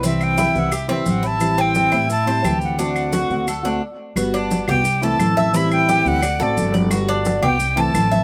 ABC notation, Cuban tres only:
X:1
M:4/4
L:1/8
Q:1/4=175
K:G
V:1 name="Cuban tres"
C2 E2 G C2 E- | E C2 E2 c G2 | D2 F2 A D z2 | F D2 G2 A2 e |
E2 G2 d A2 d | F D2 G2 A2 e |]